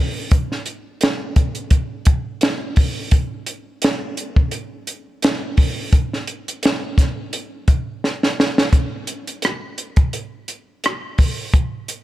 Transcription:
0.31 kick loud
0.31 closed hi-hat medium
0.52 snare soft
0.66 closed hi-hat medium
1.01 snare loud
1.01 closed hi-hat medium
1.36 kick medium
1.36 closed hi-hat medium
1.55 closed hi-hat soft
1.71 kick medium
1.71 closed hi-hat medium
2.05 kick medium
2.05 closed hi-hat medium
2.41 snare loud
2.41 closed hi-hat medium
2.76 kick medium
2.76 open hi-hat medium
3.11 kick medium
3.11 closed hi-hat medium
3.46 closed hi-hat medium
3.82 snare loud
3.82 closed hi-hat medium
4.17 closed hi-hat medium
4.36 kick medium
4.51 closed hi-hat medium
4.87 closed hi-hat medium
5.22 snare loud
5.22 closed hi-hat medium
5.57 kick medium
5.57 open hi-hat medium
5.93 kick medium
5.93 closed hi-hat medium
6.13 snare soft
6.27 closed hi-hat medium
6.48 closed hi-hat medium
6.63 snare loud
6.63 closed hi-hat medium
6.98 kick medium
6.98 snare soft
6.98 closed hi-hat medium
7.33 closed hi-hat medium
7.68 kick medium
7.68 closed hi-hat medium
8.04 snare soft
8.23 snare medium
8.40 snare medium
8.58 snare medium
8.73 kick medium
8.73 closed hi-hat medium
9.07 closed hi-hat medium
9.27 closed hi-hat medium
9.42 cross-stick medium
9.42 closed hi-hat medium
9.78 closed hi-hat medium
9.96 kick medium
9.96 closed hi-hat soft
10.13 closed hi-hat medium
10.48 closed hi-hat medium
10.84 cross-stick loud
10.84 closed hi-hat medium
11.18 kick medium
11.18 open hi-hat medium
11.54 kick medium
11.54 closed hi-hat medium
11.88 closed hi-hat medium

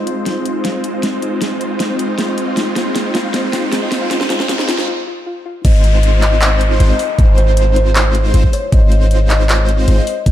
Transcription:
0.00 4.87 G#3 medium
0.00 4.88 G#3 medium
0.00 4.88 C4 medium
0.00 4.88 D#4 medium
0.00 4.88 F4 medium
0.00 4.88 C5 loud
0.00 4.89 C5 loud
0.00 riser medium
0.07 closed hi-hat medium
0.17 0.20 F5 loud
0.26 0.31 F4 medium
0.26 snare soft
0.26 closed hi-hat medium
0.46 0.51 F4 medium
0.46 closed hi-hat medium
0.65 0.73 G#4 medium
0.65 snare medium
0.65 closed hi-hat medium
0.75 0.80 D#5 medium
0.84 closed hi-hat medium
0.94 0.97 F5 loud
1.03 1.08 F4 medium
1.03 snare medium
1.03 closed hi-hat medium
1.22 1.28 F4 medium
1.22 closed hi-hat medium
1.42 1.49 G#4 medium
1.42 snare medium
1.42 closed hi-hat medium
1.51 1.56 D#5 medium
1.61 closed hi-hat medium
1.71 1.74 F5 loud
1.80 1.85 F4 medium
1.80 snare medium
1.80 closed hi-hat medium
1.99 2.05 F4 medium
1.99 closed hi-hat medium
2.18 2.26 G#4 medium
2.18 snare medium
2.18 closed hi-hat medium
2.28 2.33 D#5 medium
2.38 closed hi-hat medium
2.48 2.51 F5 loud
2.57 2.62 F4 medium
2.57 snare medium
2.57 closed hi-hat medium
2.76 2.81 F4 medium
2.76 snare medium
2.76 closed hi-hat medium
2.95 3.03 G#4 medium
2.95 snare medium
2.95 closed hi-hat medium
3.05 3.10 D#5 medium
3.15 snare medium
3.15 closed hi-hat medium
3.25 3.28 F5 medium
3.34 3.39 F4 medium
3.34 snare medium
3.34 closed hi-hat medium
3.53 3.58 F4 medium
3.53 snare medium
3.53 closed hi-hat medium
3.72 3.80 G#4 medium
3.72 snare medium
3.72 closed hi-hat medium
3.82 3.87 D#5 medium
3.92 snare medium
3.92 closed hi-hat medium
4.02 4.05 F5 loud
4.11 4.16 F4 medium
4.11 snare medium
4.11 closed hi-hat medium
4.21 snare medium
4.30 4.35 F4 medium
4.30 snare loud
4.30 closed hi-hat medium
4.40 snare medium
4.49 4.55 F4 medium
4.49 snare loud
4.49 closed hi-hat medium
4.59 snare medium
4.68 4.74 F4 medium
4.68 snare loud
4.68 closed hi-hat medium
4.78 snare medium
4.88 4.93 F4 medium
5.07 5.12 F4 medium
5.26 5.32 F4 medium
5.45 5.51 F4 medium
5.65 6.78 G#1 loud
5.65 6.78 G#3 medium
5.65 6.78 C4 medium
5.65 6.78 D#4 medium
5.65 6.78 F4 medium
5.65 6.78 C5 loud
5.65 5.80 D#5 loud
5.65 kick loud
5.65 closed hi-hat medium
5.65 crash loud
5.65 downlifter medium
5.84 closed hi-hat medium
6.03 closed hi-hat medium
6.22 6.42 D#5 loud
6.22 clap medium
6.22 closed hi-hat medium
6.42 clap loud
6.42 closed hi-hat medium
6.61 closed hi-hat medium
6.80 6.92 G#1 loud
6.80 6.94 G#3 loud
6.80 6.94 C4 medium
6.80 6.94 D#4 medium
6.80 6.94 F4 medium
6.80 6.94 C5 loud
6.80 closed hi-hat medium
6.90 7.00 D#5 medium
6.99 open hi-hat medium
7.19 8.32 G#1 loud
7.19 8.32 G#3 medium
7.19 8.32 C4 medium
7.19 8.32 D#4 medium
7.19 8.32 F4 medium
7.19 8.32 C5 loud
7.19 kick loud
7.19 closed hi-hat medium
7.38 7.57 C5 loud
7.38 closed hi-hat medium
7.57 closed hi-hat medium
7.76 7.91 C5 medium
7.76 closed hi-hat medium
7.96 clap loud
7.96 closed hi-hat medium
8.15 closed hi-hat medium
8.34 8.46 G#1 loud
8.34 8.47 G#3 loud
8.34 8.47 C4 medium
8.34 8.47 D#4 medium
8.34 8.47 F4 loud
8.34 8.47 C5 loud
8.34 8.48 C5 loud
8.34 closed hi-hat medium
8.44 kick medium
8.53 8.63 C#5 medium
8.53 open hi-hat medium
8.72 9.86 G#1 loud
8.72 9.86 G#3 medium
8.72 9.86 C4 medium
8.72 9.86 D#4 medium
8.72 9.86 F4 medium
8.72 9.86 C5 loud
8.72 8.87 D#5 loud
8.72 kick loud
8.72 closed hi-hat medium
8.92 closed hi-hat medium
9.11 closed hi-hat medium
9.30 9.50 D#5 loud
9.30 clap medium
9.30 closed hi-hat medium
9.49 clap loud
9.49 closed hi-hat medium
9.69 closed hi-hat medium
9.88 9.99 G#1 loud
9.88 10.01 G#3 loud
9.88 10.01 C4 medium
9.88 10.01 D#4 loud
9.88 10.01 F4 medium
9.88 10.01 C5 loud
9.88 closed hi-hat medium
9.98 10.07 D#5 medium
10.07 open hi-hat medium
10.26 10.32 G#1 loud
10.26 10.32 G#3 medium
10.26 10.32 C4 medium
10.26 10.32 D#4 medium
10.26 10.32 F4 medium
10.26 10.32 C5 loud
10.26 kick loud
10.26 closed hi-hat medium

